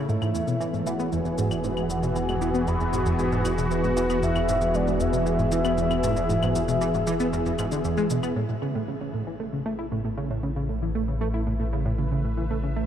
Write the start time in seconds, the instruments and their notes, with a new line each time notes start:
Already playing: analog synth pad E4 C#5
0.09 analog synth bass E1, synth arpeggio sound G#2, analog synth pad E3, soft synth lead E5, cabasa
0.22 synth arpeggio sound G#2, cabasa, claves
0.29 analog synth pad B3
0.35 synth arpeggio sound E2, cabasa
0.40 analog synth pad G#4
0.48 synth arpeggio sound B2, cabasa
0.61 synth arpeggio sound E3, cabasa
0.74 synth arpeggio sound G#2, cabasa
0.87 synth arpeggio sound E3, soft synth lead F#5, cabasa
0.99 synth arpeggio sound B3, analog synth pad F#4, cabasa
1.12 synth arpeggio sound E2, soft synth lead G#5, cabasa
1.25 synth arpeggio sound E2, cabasa
1.38 synth arpeggio sound G#2, cabasa
1.51 synth arpeggio sound E2, cabasa, claves
1.64 synth arpeggio sound G#2, cabasa
1.77 synth arpeggio sound G#2, cabasa, claves
1.90 synth arpeggio sound E2, soft synth lead F#5, cabasa
2.03 synth arpeggio sound B2, cabasa
2.15 synth arpeggio sound E3, soft synth lead G#5, cabasa
2.29 synth arpeggio sound G#2, cabasa, claves
2.41 synth arpeggio sound E3, cabasa
2.54 synth arpeggio sound B3, cabasa
2.67 synth arpeggio sound E2, soft synth lead B5, cabasa
2.80 synth arpeggio sound E2, cabasa
2.93 synth arpeggio sound G#2, cabasa
3.06 synth arpeggio sound E2, cabasa
3.19 synth arpeggio sound G#2, cabasa
3.32 synth arpeggio sound G#2, cabasa
3.45 synth arpeggio sound E2, cabasa, claves
3.58 synth arpeggio sound B2, cabasa
3.71 synth arpeggio sound E3, soft synth lead B4, cabasa
3.84 synth arpeggio sound G#2, cabasa
3.97 synth arpeggio sound E3, cabasa
4.10 synth arpeggio sound B3, cabasa, claves
4.23 synth arpeggio sound E2, soft synth lead E5, cabasa
4.36 synth arpeggio sound E2, cabasa, claves
4.49 synth arpeggio sound G#2, cabasa
4.61 synth arpeggio sound E2, cabasa
4.74 synth arpeggio sound G#2, soft synth lead D5, cabasa
4.87 synth arpeggio sound G#2, cabasa
5.00 synth arpeggio sound E2, soft synth lead E5, cabasa
5.13 synth arpeggio sound B2, cabasa
5.26 synth arpeggio sound E3, cabasa
5.39 synth arpeggio sound G#2, cabasa
5.52 synth arpeggio sound E3, cabasa
5.65 synth arpeggio sound B3, cabasa, claves
5.78 synth arpeggio sound E2, cabasa
5.91 synth arpeggio sound E2, cabasa, claves
6.03 synth arpeggio sound G#2, cabasa
6.16 synth arpeggio sound E2, cabasa
6.29 synth arpeggio sound G#2, cabasa
6.42 synth arpeggio sound G#2, cabasa, claves
6.55 synth arpeggio sound E2, cabasa
6.68 synth arpeggio sound B2, cabasa
6.81 synth arpeggio sound E3, cabasa
6.94 synth arpeggio sound G#2, cabasa
7.07 synth arpeggio sound E3, cabasa
7.20 synth arpeggio sound B3, cabasa
7.33 synth arpeggio sound E2, cabasa
7.46 synth arpeggio sound E2, cabasa
7.59 synth arpeggio sound G#2, cabasa, claves
7.72 synth arpeggio sound D3, cabasa
7.84 synth arpeggio sound E2, cabasa
7.97 synth arpeggio sound G#3, cabasa
8.10 synth arpeggio sound B2, cabasa
8.23 synth arpeggio sound B3, cabasa, claves
8.36 analog synth bass A1, synth arpeggio sound A2, analog synth pad A3
8.49 synth arpeggio sound A2
8.62 synth arpeggio sound C#3
8.75 synth arpeggio sound A2, analog synth pad E4
8.88 synth arpeggio sound C#3
9.01 synth arpeggio sound C#3
9.14 synth arpeggio sound A2
9.21 analog synth pad B4
9.27 synth arpeggio sound E3
9.40 synth arpeggio sound A3
9.53 synth arpeggio sound C#3
9.66 synth arpeggio sound A3
9.79 synth arpeggio sound E4
9.92 synth arpeggio sound A2
10.05 synth arpeggio sound A2
10.18 synth arpeggio sound C#3
10.23 analog synth pad E5
10.31 synth arpeggio sound A2
10.43 synth arpeggio sound C#3
10.56 synth arpeggio sound C#3
10.69 synth arpeggio sound A2
10.82 synth arpeggio sound E3
10.95 synth arpeggio sound A3
11.08 synth arpeggio sound C#3
11.21 synth arpeggio sound A3
11.34 synth arpeggio sound E4
11.47 synth arpeggio sound A2
11.60 synth arpeggio sound A2
11.73 synth arpeggio sound C#3
11.86 synth arpeggio sound A2
11.99 synth arpeggio sound C#3
12.12 synth arpeggio sound C#3
12.24 synth arpeggio sound A2
12.37 synth arpeggio sound E3
12.51 synth arpeggio sound A3
12.63 synth arpeggio sound C#3
12.76 synth arpeggio sound A3